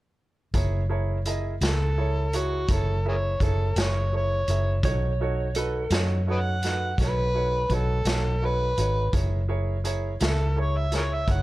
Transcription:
0.54 fingered electric bass F#1, upright piano E4 G#4 A#4 C#5, kick, closed hi-hat
0.89 upright piano E4 G#4 A#4 C#5
1.25 upright piano E4 G#4 A#4 D#5, closed hi-hat
1.61 fingered electric bass C#2, upright piano E4 G#4 A#4 E5, harmonica A4, snare, closed hi-hat
1.98 upright piano E4 G#4 A#4 C#5
2.33 upright piano E4 G#4 A#4 C#5, harmonica F#4, closed hi-hat
2.68 fingered electric bass F#1, upright piano E4 G#4 A#4 C#5, harmonica A4, kick, closed hi-hat
3.05 upright piano E4 G#4 A#4 E5, harmonica G#4 A#4 C#5
3.40 fingered electric bass F#1, upright piano E4 G#4 A#4 C#5, harmonica A4, kick, closed hi-hat
3.76 fingered electric bass F#1, upright piano E4 G#4 A#4 C#5, snare, closed hi-hat
3.80 harmonica C#5
4.13 upright piano E4 G#4 A#4 C#5, harmonica C#5
4.48 fingered electric bass F#1, upright piano E4 G#4 A#4 E5, closed hi-hat
4.83 fingered electric bass B1, upright piano D#4 F#4 A4 C#5, electric slide guitar C#5, kick, closed hi-hat
5.21 upright piano D#4 F#4 A4 C#5
5.55 upright piano D#4 F#4 A4 B4, electric slide guitar A4, closed hi-hat
5.90 fingered electric bass F#2, upright piano D#4 F#4 A4 C#5, snare, closed hi-hat
6.27 upright piano D#4 F#4 A4 C#5, harmonica B4 D#5 F#5
6.63 upright piano D#4 F#4 A4 B4, snare, closed hi-hat
6.98 fingered electric bass B1, upright piano D#4 F#4 A4 C#5, kick, snare, closed hi-hat
7.04 harmonica B4
7.34 upright piano D#4 F#4 A4 C#5
7.69 fingered electric bass B1, upright piano D#4 F#4 A4 C#5, kick, closed hi-hat
7.74 harmonica A4
8.05 fingered electric bass B1, upright piano D#4 F#4 A4 C#5, snare, closed hi-hat
8.42 upright piano D#4 F#4 A4 C#5, harmonica B4
8.78 fingered electric bass G#1, upright piano D#4 F#4 A4 C#5, closed hi-hat
9.13 fingered electric bass F#1, upright piano E4 G#4 A#4 C#5, kick, closed hi-hat
9.48 upright piano E4 G#4 A#4 C#5
9.84 upright piano E4 G#4 A#4 C#5, closed hi-hat
10.20 fingered electric bass C#2, upright piano E4 G#4 A#4 E5, snare, closed hi-hat
10.25 harmonica A4
10.56 upright piano E4 G#4 A#4 C#5
10.61 harmonica C#5
10.77 harmonica E5
10.92 upright piano E4 G#4 A#4 C#5, harmonica G#4 A#4 C#5, snare, closed hi-hat
11.14 harmonica E5
11.28 fingered electric bass F#1, upright piano E4 G#4 A#4 C#5, harmonica F#5, kick, closed hi-hat

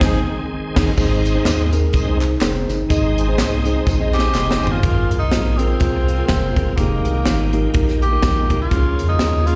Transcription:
Already playing: tonewheel organ D#3 G#3 C4 G#4, horn section C4 D#4 G#4
0.01 analog synth bass G#1, tine electric piano C4 D#4 G#4 C5, kick, snare, crash
0.76 analog synth bass G#1, tine electric piano C4 D#4 G#4, kick, snare, crash
0.97 analog synth bass G#1, tine electric piano G#2 C4 D#4 G#4 C5, french horn section D#3 G#3 C4 D#4, tonewheel organ G#3 C4 D#4, kick, crash, tambourine
1.25 closed hi-hat, tambourine
1.35 tine electric piano C4 D#4 G#4 C5
1.45 analog synth bass D#2, snare, clap, closed hi-hat, tambourine
1.72 tine electric piano C4 D#4 G#4 A#4, closed hi-hat, tambourine
1.93 analog synth bass C2, tonewheel organ G#3 C4 D#4, kick, closed hi-hat, tambourine
2.07 tine electric piano C4 D#4 G#4 C5
2.21 clap, closed hi-hat, tambourine
2.41 analog synth bass F1, tine electric piano C4 D#4 G#4 A#4, snare, clap, closed hi-hat, tambourine
2.48 tine electric piano C5
2.69 analog synth bass G1, snare, closed hi-hat, tambourine
2.89 analog synth bass G#1, tine electric piano G#2 C4 D#4 G#4 D#5, tonewheel organ G#3 C4 D#4, kick, closed hi-hat, tambourine
3.18 closed hi-hat, tambourine
3.28 tine electric piano C4 D#4 G#4 C5
3.38 analog synth bass C2, snare, clap, closed hi-hat, tambourine
3.65 tine electric piano C4 D#4 G#4 C5, closed hi-hat, tambourine
3.86 analog synth bass A#1, kick, snare, tambourine
4.00 tine electric piano C4 D#4 G#4 D#5
4.14 tenor saxophone G4, tine electric piano C5 G#5, clap, tambourine
4.19 snare
4.34 analog synth bass F1, tine electric piano D#5 C6, snare, clap, tambourine
4.51 snare
4.62 analog synth bass G1, tine electric piano C5 G#5, tambourine
4.67 tenor saxophone F4, floor tom
4.83 analog synth bass G#1, tine electric piano G#2 C4 F4 G#4 A#4, tonewheel organ F3 A#3 C4 G#4, french horn section G#3 A#3 C4 F4, kick, closed hi-hat
5.10 analog synth bass C2, closed hi-hat
5.19 tenor saxophone D#4
5.32 analog synth bass A#1, tine electric piano C4 F4 G#4 C5, snare, closed hi-hat
5.57 tenor saxophone C4, tine electric piano C4 F4 G#4 A#4, closed hi-hat
5.80 analog synth bass C2, tine electric piano C4 F4 G#4 C5, kick, closed hi-hat
6.08 closed hi-hat
6.18 tine electric piano C4 F4 G#4 A#4
6.27 analog synth bass F1, tenor saxophone C4, kick, snare, closed hi-hat
6.56 analog synth bass G1, tine electric piano C4 F4 G#4 A#4, kick, closed hi-hat
6.77 analog synth bass F1, tonewheel organ D#3 G3 A#3 G5, tenor saxophone A#3, tine electric piano A#3 D#4 G4 G#4, french horn section D#4 F4, kick, closed hi-hat
6.83 tonewheel organ G#3
7.04 analog synth bass C2, closed hi-hat
7.26 analog synth bass G#1, tine electric piano A#3 D#4 G4 A#4, snare, closed hi-hat
7.53 tine electric piano A#3 D#4 G4 A#4, closed hi-hat
7.74 analog synth bass A#1, tine electric piano A#3 D#4 G4 A#4, kick, closed hi-hat
7.88 snare
8.02 tenor saxophone G4, closed hi-hat
8.12 tine electric piano A#3 D#4 G4 A#4
8.23 analog synth bass A#1, kick, snare, closed hi-hat
8.50 analog synth bass C2, tine electric piano A#3 D#4 G4 A#4, kick, closed hi-hat
8.62 tenor saxophone F4
8.71 analog synth bass C#2, tine electric piano C#3 A#3 C#4 E4 G#4, tonewheel organ F3 A#3 C#4 G#4, french horn section C#4 F4, kick, closed hi-hat
8.77 tine electric piano F4
8.98 analog synth bass F2, closed hi-hat
9.09 tenor saxophone D#4
9.19 analog synth bass D#2, tine electric piano A#3 C#4 F4 G#4, snare, closed hi-hat
9.46 tine electric piano A#3 C#4 F4 G#4, tenor saxophone F4, closed hi-hat

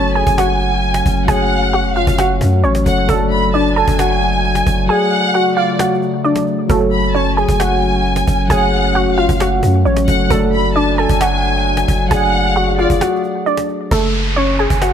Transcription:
Already playing: 808-style bass F#1, tine electric piano F#3 F#4 A4 C#5, ambient pad F#3 A3 C#4, synth pluck C#4 C#5, violin section A5
0.15 synth pluck G#4 G#5, violin section G#5, cajon slap
0.27 808-style bass F#1, cajon bass
0.38 synth pluck F#4 F#5, cajon slap
0.61 cajon slap
0.83 cajon slap
0.94 cajon slap
1.06 808-style bass F#1, cajon bass
1.17 cajon slap
1.25 808-style bass F#1, tine electric piano F#3 F#4, synth pluck G#4 G#5, violin section F#5, cajon bass
1.29 tine electric piano A3 C#5
1.73 synth pluck F#4 F#5, cajon slap
1.85 808-style bass F1
1.96 808-style bass F#1, synth pluck F4 F5, violin section F5, cajon slap
2.07 808-style bass F#1, cajon bass
2.18 synth pluck F#4 F#5, cajon slap
2.41 808-style bass F#2, cajon bass
2.64 808-style bass A1, synth pluck C#4 C#5, cajon slap
2.75 cajon slap
2.85 808-style bass F#1, tine electric piano F#3 F#4 A4 C#5, violin section F#5, cajon bass
3.06 808-style bass F#1, brass ensemble A2 D3 F#3, tine electric piano F#3 F#4, synth pluck A3 A4, ambient pad D4, cajon bass
3.10 tine electric piano A4 D5
3.31 violin section B5, cajon slap
3.54 synth pluck D4 D5, violin section A5, cajon slap
3.76 synth pluck A4 A5, violin section G#5, cajon slap
3.88 808-style bass F#1, cajon bass
3.99 synth pluck F#4 F#5, cajon slap
4.21 cajon slap
4.44 cajon slap
4.55 cajon slap
4.67 808-style bass F#1, cajon bass
4.86 ambient pad C#3, tine electric piano F#3 F#4, synth pluck G#4 G#5, violin section F#5, cajon slap
4.90 tine electric piano A3 D5
5.34 synth pluck F#4 F#5, cajon slap
5.57 synth pluck F4 F5, violin section D5, cajon slap
5.79 synth pluck F#4 F#5, cajon slap
5.94 cajon slap
6.02 cajon slap
6.24 synth pluck D4 D5, cajon slap
6.36 cajon slap
6.47 cajon slap
6.67 808-style bass F#1, brass ensemble A2 C#3 F#3, tine electric piano F#3 F#4, synth pluck A3 A4, ambient pad C#4, cajon bass
6.71 tine electric piano A4 C#5
6.92 violin section B5, cajon slap
7.15 synth pluck C#4 C#5, violin section A5, cajon slap
7.37 synth pluck G#4 G#5, violin section G#5, cajon slap
7.49 808-style bass F#1, cajon bass
7.60 synth pluck F#4 F#5, cajon slap
7.82 cajon slap
8.05 cajon slap
8.16 cajon slap
8.27 808-style bass F#1, cajon bass
8.47 808-style bass F#1, tine electric piano F#3 F#4, synth pluck G#4 G#5, violin section F#5, cajon bass
8.51 tine electric piano A3 C#5
8.95 synth pluck F#4 F#5, cajon slap
9.06 808-style bass F1
9.18 808-style bass F#1, synth pluck F4 F5, violin section F5, cajon slap
9.29 808-style bass F#1, cajon bass
9.40 synth pluck F#4 F#5, cajon slap
9.63 808-style bass F#2, cajon bass
9.85 808-style bass A1, synth pluck C#4 C#5, cajon slap
9.97 cajon slap
10.06 808-style bass F#1, tine electric piano F#3 F#4 A4 C#5, violin section F#5, cajon bass
10.27 808-style bass F#1, brass ensemble A2 D3 F#3, tine electric piano F#3 F#4, ambient pad F#3 A3 D4, synth pluck A3 A4, cajon bass
10.31 tine electric piano A4 D5
10.53 violin section B5, cajon slap
10.76 synth pluck D4 D5, violin section A5, cajon slap
10.98 synth pluck A4 A5, violin section G#5, cajon slap
11.09 808-style bass F#1, cajon bass
11.21 synth pluck F#4 F#5, cajon slap
11.43 cajon slap
11.66 cajon slap
11.77 cajon slap
11.88 808-style bass F#1, cajon bass
12.08 808-style bass F#1, tine electric piano F#3 F#4, ambient pad G#4, synth pluck G#4 G#5, violin section F#5, cajon bass
12.12 tine electric piano A3 D5
12.56 synth pluck F#4 F#5, cajon slap
12.79 synth pluck F4 F5, violin section D5, cajon slap
12.90 808-style bass F#1, cajon bass
13.01 synth pluck F#4 F#5, cajon slap
13.09 cajon slap
13.16 cajon slap
13.24 cajon slap
13.46 synth pluck D4 D5, cajon slap
13.57 cajon slap
13.69 cajon slap
13.91 808-style bass F#1, synth pluck A3 A4, cajon bass, downlifter
14.14 cajon slap
14.36 synth pluck C#4 C#5, cajon slap
14.59 synth pluck G#4 G#5, cajon slap
14.70 808-style bass F#1, cajon bass
14.82 synth pluck F#4 F#5, cajon slap

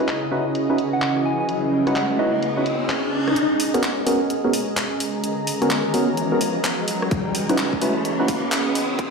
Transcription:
Already playing: analog synth pad C#3 E4 F#4 G#4 B4 D#5, ambient pad C#4 G#4 D#5 A#5, riser
0.08 clap, closed hi-hat
0.32 synth stab C#4 D#4 E4 F#4 B4
0.55 closed hi-hat
0.70 synth stab C#4 D#4 E4 F#4 B4
0.78 closed hi-hat
0.93 soft synth lead F#5
1.02 clap, closed hi-hat
1.17 cross-stick
1.25 soft synth lead G#5
1.40 soft synth lead G#5
1.49 closed hi-hat
1.87 synth stab C#4 D#4 E4 F#4 B4, soft synth lead F#5, cross-stick, closed hi-hat
1.96 soft synth lead F#5, clap, closed hi-hat
2.19 synth stab C#4 D#4 E4 F#4 B4, soft synth lead D#5
2.34 soft synth lead D#5
2.43 closed hi-hat
2.57 synth stab C#4 D#4 E4 F#4 B4
2.66 closed hi-hat
2.89 cross-stick, clap, closed hi-hat
3.28 cross-stick, closed hi-hat
3.36 analog synth pad G#3 C#4 F#4 A#4 B4 D#5, closed hi-hat, riser
3.60 open hi-hat
3.74 synth stab B3 C#4 F#4 G#4 A#4, cross-stick, closed hi-hat
3.83 clap, closed hi-hat
4.06 synth stab B3 C#4 F#4 G#4 A#4, open hi-hat
4.30 closed hi-hat
4.44 synth stab B3 C#4 F#4 G#4 A#4
4.50 ambient pad A#5, open hi-hat
4.77 clap, closed hi-hat
5.00 open hi-hat
5.24 closed hi-hat
5.47 open hi-hat
5.62 synth stab B3 C#4 F#4 G#4 A#4, cross-stick, closed hi-hat
5.71 clap, closed hi-hat
5.94 synth stab B3 C#4 F#4 G#4 A#4, open hi-hat
6.17 closed hi-hat
6.32 synth stab B3 C#4 F#4 G#4 A#4
6.41 open hi-hat
6.64 cross-stick, clap, closed hi-hat
6.88 open hi-hat
7.02 cross-stick
7.11 analog synth pad C#3 E3 G#4, ambient pad C#4, kick, closed hi-hat
7.35 open hi-hat
7.49 synth stab C#4 D#4 E4 F#4 B4, cross-stick, closed hi-hat
7.58 clap, closed hi-hat
7.73 ambient pad G#4, kick
7.81 synth stab C#4 D#4 E4 F#4 B4, open hi-hat
8.05 closed hi-hat
8.20 synth stab C#4 D#4 E4 F#4 B4
8.28 kick, open hi-hat
8.52 clap, closed hi-hat
8.75 open hi-hat
8.99 analog synth pad C#5, kick, closed hi-hat

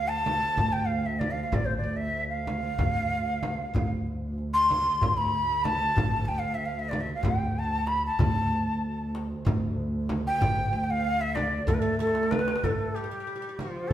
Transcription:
Already playing: upright bass D2, double bass D2
0.08 ney A5
0.26 darbuka tek, frame drum
0.57 upright bass D2, frame drum, darbuka dum
0.72 ney G5
0.85 ney F5
0.90 darbuka ka
1.06 ney E5
1.19 ney D5, frame drum
1.31 ney F5
1.43 ney F5
1.52 upright bass A1, ney D5, frame drum, darbuka dum
1.65 ney C5
1.77 ney D5
1.83 upright bass D2, darbuka ka
1.97 ney E5
2.29 ney F5
2.47 darbuka tek, frame drum
2.78 upright bass D2, frame drum, darbuka dum
3.43 darbuka tek, frame drum
3.73 upright bass D2, double bass D2, darbuka dum, frame drum
4.07 darbuka ka
4.38 darbuka ka
4.54 ney C6
4.70 darbuka tek, frame drum
5.01 upright bass D2, darbuka dum, frame drum
5.17 ney B5
5.34 darbuka ka
5.64 ney A5, darbuka tek, frame drum
5.96 upright bass A1, darbuka dum, frame drum
6.25 upright bass D2, ney G5 A5, darbuka ka
6.39 ney F5
6.55 ney E5
6.61 darbuka ka
6.65 ney F5
6.79 ney E5
6.89 ney D5, darbuka tek
6.93 frame drum
7.01 ney E5
7.14 ney F5
7.23 upright bass D2, ney G5, darbuka dum, frame drum
7.56 ney A5, darbuka ka
7.87 ney B5, darbuka tek
8.06 ney A5
8.18 double bass D2, upright bass D2, darbuka dum, frame drum
8.51 darbuka ka
8.83 darbuka ka
9.15 darbuka tek
9.45 upright bass D2, darbuka dum, frame drum
9.79 darbuka ka
10.09 darbuka tek, frame drum
10.27 ney G5
10.40 upright bass A1, darbuka dum, frame drum
10.73 upright bass D2, darbuka ka
10.84 ney G5
10.91 ney F5
11.05 darbuka ka
11.21 ney E5
11.35 ney D5, darbuka tek, frame drum
11.67 upright bass D2, oud A3, ney A4, darbuka dum, frame drum
11.74 ney B4
11.80 oud A3, ney A4
11.99 oud A3, ney A4, darbuka tek
12.07 darbuka ka
12.15 darbuka tek
12.23 darbuka ka
12.31 ney B4, darbuka tek, frame drum
12.39 darbuka ka
12.48 darbuka tek
12.56 darbuka ka
12.64 oud A3, ney A4, frame drum, darbuka dum
12.95 oud G3, ney G4
13.04 oud G3
13.11 oud G3
13.20 oud G3
13.27 oud G3, darbuka ka
13.36 oud G3
13.42 oud G3
13.49 oud G3
13.58 oud F3, ney F4, darbuka tek, frame drum
13.88 ney A4

